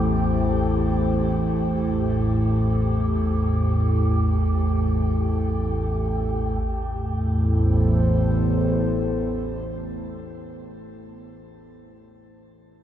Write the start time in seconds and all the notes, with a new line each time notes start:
Already playing: A1 E2 A3 E4 G4 A4 C5
6.61 A1 E2 A3
6.79 E4
6.94 A4
7.10 C5